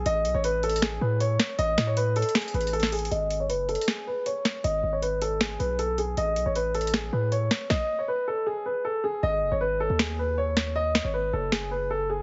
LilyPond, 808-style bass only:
\new Staff \with { instrumentName = "808-style bass" } { \clef bass \time 4/4 \key gis \phrygian \tempo 4 = 157 a,,8 b,,16 a,,4.~ a,,16 a,4 r8 | a,,8 a,4~ a,16 r8. a,,4. | gis,,4 fis,,8. r2 r16 | gis,,8 gis,,2 b,,4. |
a,,8 b,,16 a,,4.~ a,,16 a,4 r8 | r1 | gis,,8 fis,,16 gis,,4 dis,2~ dis,16~ | dis,8. gis,,8. fis,,2~ fis,,8 | }